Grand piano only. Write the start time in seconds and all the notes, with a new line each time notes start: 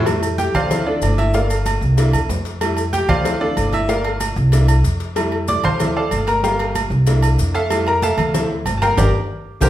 0.06 G3 A3 E4
0.38 G4 G5
0.55 F4 C5 D5 F5
0.70 F3 C4 E4
0.86 D4 F4 A4 D5
1.18 E4 E5
1.34 A#3 F4 A4 A#4 D5 F5
1.97 A#3 D4 E4
2.61 G3 A3 E4
2.93 G4 G5
3.09 F4 C5 D5 F5
3.24 F3 C4 E4
3.41 D4 F4 A4 D5
3.74 E4 E5
3.89 A3 A#3 F4 A#4 D5 F5
4.52 A#3 D4 E4
5.16 G3 A3 E4
5.48 D5 D6
5.64 C5 F5 A5 C6
5.80 F3 C4 E4
5.96 A4 D5 F5 A5
6.28 A#4 A#5
6.43 G3 A#3 F4 A#4 F5 G5 A#5
7.07 A#3 D4 E4
7.54 A4 E5 F5 A5
7.70 G3 A3 E4
7.88 A#4 A#5
8.03 A4 E5 F5 A5
8.34 F3 C4 E4
8.77 A5
8.82 A#4 F5 G5 A#5
8.98 G4 A#4 D5
9.62 G4 A#4 C5